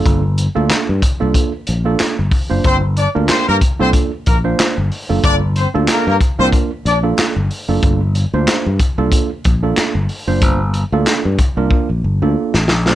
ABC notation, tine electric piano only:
X:1
M:4/4
L:1/16
Q:"Swing 16ths" 1/4=93
K:Gm
V:1 name="Tine electric piano"
[B,DFA] z2 [B,DFA]2 z2 [B,DFA]2 z2 [B,DFA]2 z2 [B,DFc]- | [B,DFc] z2 [B,DFB]2 z2 [B,DFA]2 z2 [B,DFc]2 z2 [B,DFA]- | [B,DFA] z2 [B,DFA]2 z2 [B,DFB]2 z2 [B,DFA]2 z2 [B,DFA]- | [B,DFA] z2 [B,DFc]2 z2 [B,DFA]2 z2 [B,DFA]2 z2 [B,DFc]- |
[B,DFc] z2 [B,DFA]2 z2 [B,DFB]2 z2 [B,DFA]2 z2 [B,DFc] |]